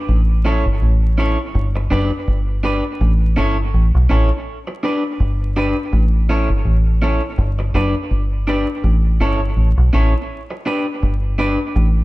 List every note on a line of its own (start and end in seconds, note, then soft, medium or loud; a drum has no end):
0.09 0.62 A1 loud
0.45 0.64 C#4 medium
0.45 0.64 E4 loud
0.45 0.64 A4 loud
0.45 0.65 C#5 medium
0.66 0.80 G1 medium
0.82 1.35 A1 loud
1.18 1.37 C#4 medium
1.18 1.37 E4 medium
1.18 1.38 A4 medium
1.18 1.38 C#5 medium
1.55 1.88 G1 loud
1.76 muted clean electric guitar stroke medium
1.91 2.10 F#1 loud
1.91 2.10 D4 medium
1.91 2.10 G4 medium
1.91 2.10 B4 loud
1.91 2.11 D5 loud
2.27 2.81 G1 loud
2.63 2.83 D4 medium
2.63 2.83 G4 loud
2.63 2.83 B4 loud
2.63 2.84 D5 loud
3.01 3.34 A1 loud
3.36 3.70 G1 medium
3.36 3.56 C#4 medium
3.36 3.56 E4 loud
3.36 3.56 A4 loud
3.36 3.56 C#5 loud
3.74 3.93 A1 medium
3.95 4.09 B1 medium
4.09 4.29 A1 medium
4.09 4.29 C#4 medium
4.09 4.29 E4 medium
4.09 4.29 A4 loud
4.09 4.30 C#5 loud
4.67 muted clean electric guitar stroke medium
4.83 5.02 D4 medium
4.83 5.02 G4 medium
4.83 5.03 B4 loud
4.83 5.03 D5 medium
5.20 5.73 G1 medium
5.56 5.75 D4 loud
5.56 5.75 G4 loud
5.56 5.76 B4 loud
5.56 5.76 D5 loud
5.93 6.46 A1 loud
6.29 6.48 C#4 medium
6.29 6.48 E4 loud
6.29 6.49 A4 medium
6.29 6.49 C#5 loud
6.50 6.64 G1 medium
6.65 7.18 A1 loud
7.02 7.21 C#4 medium
7.02 7.21 E4 medium
7.02 7.21 A4 medium
7.02 7.21 C#5 medium
7.38 7.71 G1 loud
7.59 muted clean electric guitar stroke soft
7.74 7.93 F#1 loud
7.74 7.94 D4 medium
7.74 7.94 G4 medium
7.74 7.94 B4 loud
7.74 7.94 D5 medium
8.11 8.64 G1 loud
8.47 8.66 D4 medium
8.47 8.67 G4 medium
8.47 8.67 B4 loud
8.47 8.67 D5 loud
8.84 9.17 A1 loud
9.20 9.54 G1 medium
9.20 9.40 C#4 medium
9.20 9.40 E4 medium
9.20 9.40 A4 medium
9.20 9.40 C#5 loud
9.57 9.76 A1 medium
9.77 9.92 B1 medium
9.93 10.12 A1 medium
9.93 10.12 C#4 medium
9.93 10.13 E4 medium
9.93 10.13 A4 medium
9.93 10.13 C#5 loud
10.50 muted clean electric guitar stroke soft
10.66 10.85 D4 medium
10.66 10.85 G4 loud
10.66 10.85 B4 medium
10.66 10.86 D5 medium
11.03 11.56 G1 loud
11.38 11.58 D4 loud
11.38 11.58 G4 medium
11.38 11.58 B4 loud
11.38 11.59 D5 medium
11.76 12.04 A1 loud